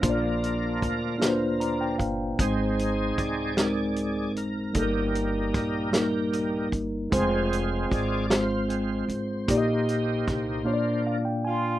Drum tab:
HH |xxxxxx|xxxxxx|xxxxxx|xxxxxx|
SD |---o--|---o--|--oo--|---o--|
BD |o-o--o|o-o---|o-o--o|o-o---|

HH |xxx---|
SD |--o---|
BD |o-o---|